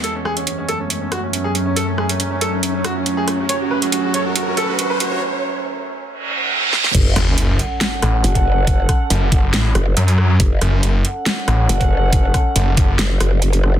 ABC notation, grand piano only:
X:1
M:4/4
L:1/16
Q:1/4=139
K:F#m
V:1 name="Grand piano"
A C G C C C A C C C F C C G C C | A C G C C C A C C C F C C G C C | c F B F F F c F F F A F F B F F | z16 |
z16 | z16 | z16 | z16 |]